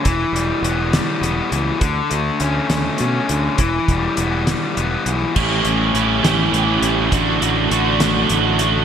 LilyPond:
<<
  \new Staff \with { instrumentName = "Distorted electric guitar" } { \time 6/8 \key d \major \tempo 4. = 68 e8 g8 b8 g8 b8 e8 | d8 a8 cis'8 a8 cis'8 d8 | e8 g8 b8 g8 b8 e8 | <a, e a cis' e'>8 <a cis' e'>8 <e a cis' e'>8 <a, e a cis' e'>4 <a cis' e'>8 |
<a, d a d' fis'>8 <a d' fis'>8 <d a d' fis'>8 <a, d a d' fis'>4 <a d' fis'>8 | }
  \new Staff \with { instrumentName = "Overdriven electric guitar" } { \time 6/8 \key d \major r2. | r2. | r2. | <a, e g cis' g'>4 <e g cis' g'>8 <a, e g cis' g'>8 <e g cis' g'>4 |
<a, d a d' fis'>4 <d a d' fis'>8 <a, d a d' fis'>8 <d a d' fis'>4 | }
  \new Staff \with { instrumentName = "Fingered electric bass" } { \clef bass \time 6/8 \key d \major e,,8 e,,8 e,,4 e,,8 cis,8 | d,8 d,8 d,8 d,8 b,8 d,8 | e,,8 e,,8 e,,4 e,,8 b,,8 | a,,8 a,,8 a,,8 a,,8 a,,8 a,,8 |
a,,8 a,,8 a,,4 a,,4 | }
  \new DrumStaff \with { instrumentName = "Drums" } \drummode { \time 6/8 <hh bd>8 hh8 hh8 <hh sn>8 hh8 hh8 | <hh bd>8 hh8 hh8 <hh sn>8 hh8 hh8 | <hh bd>8 <hh bd>8 hh8 <hh sn>8 hh8 hh8 | <cymc bd>8 hh8 hh8 <hh sn>8 hh8 hh8 |
<hh bd>8 hh8 hh8 <hh sn>8 hh8 hh8 | }
>>